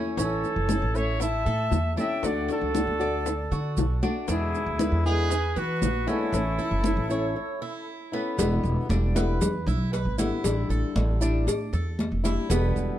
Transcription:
Already playing: A3 C#4 E4
0.17 A1 E3 A3 C#4 E4 A4 C#5, high bongo, high conga, maracas
0.43 high bongo, high conga, maracas
0.56 F#1
0.69 E3 A3 C#4 E4 A4, high bongo, high conga, maracas
0.82 A1
0.94 A3 C#4 E4 C#5 E5, high conga, maracas
1.20 E4 E5 A5, muted nylon-string guitar stroke, high bongo, high conga, maracas
1.46 A2 A4, high bongo, high conga, maracas
1.71 E2, high bongo, low bongo, high conga, maracas
1.96 A3 C#4 D4 E4 E5 G5, high bongo, high conga, maracas
2.23 D2 D3 A3 D4 F#4 D5 F#5, high bongo, high conga, maracas
2.48 F#4 A4 D5, high bongo, high conga, maracas
2.62 C#2
2.74 D3 A3 D4 F#4, high bongo, high conga, maracas
2.87 D2
2.99 A3 D4 F#4 D5, high conga, maracas
3.25 muted nylon-string guitar stroke, high bongo, high conga, maracas
3.51 D3 F#4, high bongo, high conga, maracas
3.77 B1, high bongo, low bongo, high conga, maracas
4.03 A3 D4 F#4, high bongo, high conga, maracas
4.28 E2 B2 D3 G#3 B3 D4 E4 G#4, high bongo, high conga, maracas
4.54 high bongo, high conga, maracas
4.66 D2
4.79 D3 G#3 B3 E4 B4, high bongo, high conga, maracas
4.92 E2
5.04 D3 G#3 B3 E4 G#4 B4, high conga, maracas
5.30 G#4, muted nylon-string guitar stroke, high bongo, high conga, maracas
5.56 E3 F#4 B4, high bongo, high conga, maracas
5.82 A#1, high bongo, low bongo, high conga, maracas
6.07 D3 G#3 B3 C#4 E4 A4, high bongo, high conga, maracas
6.33 A1 E3 A3 C#4 E4, high bongo, high conga, maracas
6.59 E4, high bongo, high conga, maracas
6.71 F#1
6.84 E3 A3 C#4 E4, high bongo, high conga, maracas
6.97 A1
7.09 A3 C#4 E4 C#5, high conga, maracas
7.36 muted nylon-string guitar stroke
7.62 E4
8.12 A3 B3 C#4 E4
8.37 E1 B2 D3 G3 B3 E4, cowbell, high conga, maracas
8.64 E1, high conga, maracas
8.89 E1 D3 G3 B3 D4 E4, cowbell, high conga, maracas
9.15 D3 G3 B3 E4 B4, cowbell, high conga, maracas
9.41 E2, muted nylon-string guitar stroke, cowbell, high conga, low conga, maracas
9.67 B1 E4, high conga, low conga, maracas
9.93 B4, cowbell, high conga, maracas
10.05 G#1
10.18 D3 G3 B3 E4, cowbell, high conga, maracas
10.44 A1 D3 G3 D4 E4, cowbell, high conga, maracas
10.69 A1 A4, high conga, maracas
10.96 A1 D3 G3 D4 E4, cowbell, high conga, maracas
11.21 G3 D4 E4, high conga, maracas
11.47 A2, muted nylon-string guitar stroke, cowbell, high conga, maracas
11.73 E2 A4, high conga, maracas
11.99 cowbell, high conga, maracas
12.12 F1
12.24 G3 D4 E4, cowbell, high conga, maracas
12.49 E1 B2 D3 G3 B3 E4, cowbell, maracas
12.76 E1, high conga, maracas

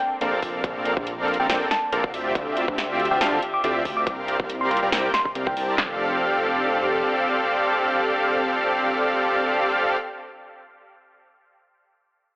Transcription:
Already playing: A#3 C4 D4
0.00 G5
0.21 A#1 C4 A4 A#4 D5 F5, closed hi-hat
0.42 A#1 C4 A4 A#4 D5 F5, kick, open hi-hat
0.64 A#1 C4 A4 A#4 D5 F5, kick, closed hi-hat
0.85 closed hi-hat
0.97 A#1 C4 A4 A#4 D5 F5, kick
1.07 closed hi-hat
1.28 closed hi-hat
1.34 closed hi-hat
1.40 A#1 C4 A4 A#4 D5 F5 G5
1.50 A#1 C4 A4 A#4 D5 G5, snare, closed hi-hat
1.71 A5, snare, closed hi-hat
1.92 A#1 C4 A4 A#4 D5 F5, closed hi-hat
2.04 kick
2.14 D2 D3 C4 F4 G4 D5 E5, open hi-hat
2.35 D2 C4 F4 G4 D5 E5, kick, closed hi-hat
2.57 closed hi-hat
2.68 D2 C4 F4 G4 D5 E5, kick
2.78 snare, closed hi-hat
3.00 closed hi-hat
3.05 closed hi-hat
3.11 D2 C4 F4 G4 D5 E5 G5
3.21 D2 C4 F4 G4 D5 F5 A5, snare, closed hi-hat
3.32 A5
3.42 closed hi-hat
3.54 D6
3.64 D2 C4 F4 G4 D5 E5, closed hi-hat
3.85 D2 C4 F4 G4 D5 E5, kick, open hi-hat
3.97 D6
4.07 C2 C3 A#3 C4 D4 G4 A#4 D5 F5, kick, closed hi-hat
4.28 closed hi-hat
4.40 C2 C4 G4 A#4 D5 F5, kick
4.50 closed hi-hat
4.61 C6
4.71 C6, closed hi-hat
4.77 closed hi-hat
4.82 C2 C4 G4 A#4 D5 F5
4.92 C2 C4 G4 A#4 D5 G5, snare, closed hi-hat
5.14 C6, snare, closed hi-hat
5.25 C6, kick
5.35 C2 C4 G4 A#4 D5 F5, closed hi-hat
5.47 G5, kick
5.57 C2 C4 G4 A#4 D5 A5, open hi-hat
5.78 F1 F3 C4 D4 G4 A4 D5 F5, kick, snare, clap

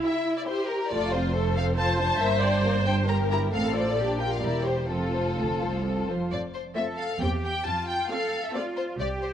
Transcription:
Already playing: E4
0.05 E4 G4 E5
0.38 D5
0.48 E4 G4 C5
0.69 A#4
0.91 F1 F2 A3 F4 A4 D5
1.13 C4 C5
1.35 A3 A4
1.56 C4 C5 F5
1.78 F4 A4 C5 A5
1.99 D4 F4 A5
2.22 G1 G2 A#3 A#4 E5
2.43 D4 G4 D5
2.65 A#3 A#4
2.87 D4 G4 G5
3.08 G4 A#4 A#5
3.31 E4 G4 A#5
3.53 A1 A2 C4 A4 F5
3.75 F4 C5 D5
3.97 A#1 A#2 D4 G4
4.20 F4 A#4 G5
4.33 F5
4.43 E1 E2 E4 G4 A#4 D5
4.66 G4 C5
4.90 F1 F2 C4 F4 A4
5.14 F4 C5
5.38 D2 C4 A4
5.61 C2 F4 C5
5.85 C4 A4
6.09 F2 F4 C5
6.31 F2 D5
6.54 C5
6.76 A3 C4 F4 A4 C5 E5
6.99 F5
7.22 E2 A#3 C4 G4 C5 G5
7.45 G5
7.67 F2 F4 A5
7.89 G5
8.10 A3 C4 F4 A4 C5 F5
8.45 E5
8.54 A3 C4 F4 C5 D5
8.77 C5
8.99 C2 G4 D5
9.22 C5

